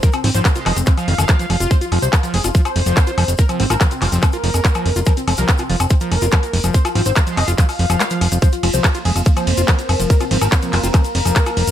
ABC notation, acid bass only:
X:1
M:4/4
L:1/16
Q:1/4=143
K:Fm
V:1 name="Acid bass" clef=bass
F, z F, F, z F F, z F, F, E, E, F, F, F, F | F, F F, z F, F, F, F F, z F, F, F, F F, z | F, F, F, F F, z F, F, F, F F, z F, F, F, F | F, z F, F, z F F, z F, F, F, F F, z F, F, |
F, F F, z F, F, F, F F, z F, F, A, F, F, F, | F, z F, F, z F F, z F, F, F, F F, z F, F, | F, F F, z F, F, F, F F, z F, F, z F F, z |]